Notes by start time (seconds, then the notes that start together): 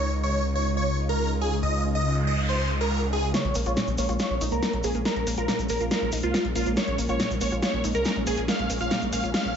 Already playing: C#2 C#3 G#3 D#4 F4 C#5
0.23 C#5
0.55 C#5
0.77 C#5
1.09 A#4
1.41 G#4
1.63 C#2 D#5, noise sweep
1.95 D#5
2.27 D#5
2.49 C5
2.81 A#4
3.13 G#4
3.34 G#3 A#3 C#4 C#5, snare, closed hi-hat, shaker
3.45 A#1, closed hi-hat
3.55 A#1 A#3, open hi-hat, shaker
3.66 A#1 F4 C#5, closed hi-hat, shaker
3.77 A#2, snare, closed hi-hat, shaker
3.87 A#1, closed hi-hat, shaker
3.98 A#1 A#3 C#5, open hi-hat, shaker
4.09 A#1 F4, closed hi-hat, shaker
4.19 F4 C#5, snare, closed hi-hat, shaker
4.30 A#1
4.41 A#1 D#4, open hi-hat, shaker
4.52 C2 A#3 A#4, closed hi-hat, shaker
4.63 A#3, snare, closed hi-hat, shaker
4.73 A#1, closed hi-hat
4.83 A#1 A#3 G#4, open hi-hat, shaker
4.95 A#1 A#3, closed hi-hat, shaker
5.05 A#3 A#4, snare, closed hi-hat, shaker
5.16 A#1, closed hi-hat
5.27 A#1 A#3, open hi-hat, shaker
5.38 A#1 F4 A#4, closed hi-hat, shaker
5.48 A#2, snare, closed hi-hat, shaker
5.59 A#1, closed hi-hat, shaker
5.69 A#1 A#3 A#4, open hi-hat, shaker
5.80 A#1 F4, closed hi-hat, shaker
5.91 F4 A#4, snare, closed hi-hat, shaker
6.02 A#1
6.12 A#1 D#4, open hi-hat, shaker
6.23 C2 A#3 F4, closed hi-hat, shaker
6.34 A#3, snare, closed hi-hat, shaker
6.45 A#1, closed hi-hat
6.55 A#1 A#3 F4, open hi-hat, shaker
6.66 A#1 A#3, closed hi-hat, shaker
6.77 A#3 C#5, snare, closed hi-hat, shaker
6.87 A#1, closed hi-hat
6.98 A#1 A#3, open hi-hat, shaker
7.09 A#1 F4 C#5, closed hi-hat, shaker
7.20 A#2, snare, closed hi-hat, shaker
7.30 A#1, closed hi-hat, shaker
7.41 A#1 A#3 C#5, open hi-hat, shaker
7.52 A#1 F4, closed hi-hat, shaker
7.62 F4 C#5, snare, closed hi-hat, shaker
7.73 A#1
7.84 A#1 D#4, open hi-hat, shaker
7.95 C2 A#3 A#4, closed hi-hat, shaker
8.05 A#3, snare, closed hi-hat, shaker
8.16 A#1, closed hi-hat
8.27 A#1 A#3 G#4, open hi-hat, shaker
8.37 A#1 A#3, closed hi-hat, shaker
8.48 A#3 F5, snare, closed hi-hat, shaker
8.59 A#1, closed hi-hat
8.70 A#1 A#3, open hi-hat, shaker
8.80 A#1 F4 F5, closed hi-hat, shaker
8.91 A#2, snare, closed hi-hat, shaker
9.02 A#1, closed hi-hat, shaker
9.13 A#1 A#3 F5, open hi-hat, shaker
9.23 A#1 F4, closed hi-hat, shaker
9.34 F4 F5, snare, closed hi-hat, shaker
9.45 A#1